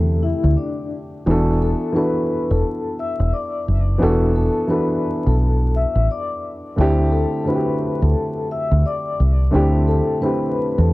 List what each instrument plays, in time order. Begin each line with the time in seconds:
Already playing: fingered electric bass E2, grand piano C3 D3 A3 C4 E4 G4, vibraphone A3 A4
0.23 vibraphone E4 E5
0.44 fingered electric bass D2
0.57 vibraphone D4 D5
1.26 fingered electric bass E1, grand piano E3 B3 D4 F#4
1.31 grand piano A4
1.62 vibraphone A4 A5
1.92 grand piano E3 B3 D4 F#4, vibraphone B4
1.97 grand piano A4, vibraphone B5
2.51 fingered electric bass E1, vibraphone A4 A5
2.99 vibraphone E5 E6
3.20 fingered electric bass E1
3.33 vibraphone D5 D6
3.68 fingered electric bass F#1
3.98 grand piano E3 B3 D4 F#4
4.03 fingered electric bass E1, grand piano A4
4.36 vibraphone A4 A5
4.67 grand piano E3 B3 D4 F#4, vibraphone B4 B5
4.72 grand piano A4
5.27 fingered electric bass B1, vibraphone A4 A5
5.76 vibraphone E5 E6
5.95 fingered electric bass A1
6.11 vibraphone D5 D6
6.76 fingered electric bass D2, grand piano D3 A3 C4 E4
6.81 grand piano G4
7.12 vibraphone A4 A5
7.44 grand piano D3 A3 C4 E4, vibraphone B4 B5
7.49 grand piano F#4
7.55 grand piano G4
8.02 fingered electric bass D2, vibraphone A4 A5
8.51 vibraphone E5 E6
8.71 fingered electric bass D2
8.86 vibraphone D5 D6
9.20 fingered electric bass C2
9.51 fingered electric bass D2, grand piano D3 A3 C4 E4
9.55 grand piano G4
9.88 vibraphone A4 A5
10.20 grand piano D3 A3 C4 E4, vibraphone B4 B5
10.25 grand piano G4
10.78 fingered electric bass E2, vibraphone A4 A5